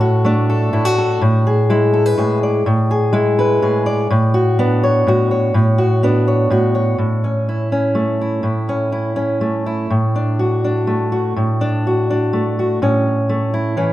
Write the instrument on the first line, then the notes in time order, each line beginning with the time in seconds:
steel-string acoustic guitar
Already playing: A2 A4
0.01 F#4
0.25 A3 D4
0.50 A4
0.73 A2 E4
0.85 F#4
0.98 A4
1.21 A2
1.47 G#4
1.70 G#3 E4
1.93 A4
2.06 B4
2.18 A2 G#4
2.43 D5
2.66 A2
2.91 G#4
3.13 G#3 E4
3.39 B4
3.62 A2 G#4
3.86 D5
4.10 A2
4.34 F#4
4.59 B3 D4
4.83 C#5
5.07 A2 F#4
5.31 C#5
5.54 A2
5.78 F#4
6.03 B3 D4
6.28 C#5
6.50 A2 F#4
6.75 C#5
6.98 A2
7.24 C#4
7.49 E4
7.72 C#4
7.95 A3
8.21 E4
8.43 A2
8.69 C#4
8.92 E4
9.16 C#4
9.41 A3
9.66 E4
9.90 A2
10.16 D4
10.39 F#4
10.64 D4
10.87 A3
11.12 F#4
11.36 A2
11.61 D4
11.87 F#4
12.10 D4
12.33 A3
12.59 F#4
12.82 A2 C#4
13.29 A3
13.54 E4
13.77 E3 C#4